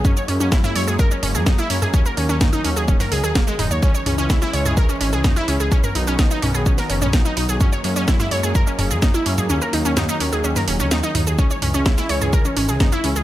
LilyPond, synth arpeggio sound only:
\new Staff \with { instrumentName = "Synth arpeggio sound" } { \time 4/4 \key cis \dorian \tempo 4 = 127 cis'16 cis''16 cis'16 cis'16 e'16 e'16 cis''16 gis'16 ais'16 cis'16 cis'16 gis'16 dis'16 e'16 cis'16 gis'16 | cis'16 ais'16 cis'16 cis'16 dis'16 dis'16 cis'16 gis'16 cis'16 ais'16 gis'16 gis'16 ais16 gis16 dis'16 cis''16 | cis'16 cis''16 cis'16 cis'16 e'16 e'16 cis''16 gis'16 ais'16 cis'16 cis'16 gis'16 dis'16 e'16 cis'16 gis'16 | cis'16 ais'16 dis'16 cis'16 dis'16 dis'16 cis'16 gis'16 cis'16 ais'16 cis'16 cis'16 dis'16 dis'16 dis'16 gis'16 |
cis'16 cis''16 cis'16 cis'16 e'16 e'16 cis''16 gis'16 ais'16 cis'16 cis'16 gis'16 dis'16 e'16 cis'16 gis'16 | cis'16 ais'16 dis'16 cis'16 dis'16 dis'16 cis'16 gis'16 cis'16 ais'16 cis'16 cis'16 dis'16 dis'16 dis'16 gis'16 | cis'16 cis''16 cis'16 cis'16 e'16 e'16 cis''16 gis'16 ais'16 cis'16 cis'16 gis'16 dis'16 e'16 cis'16 gis'16 | }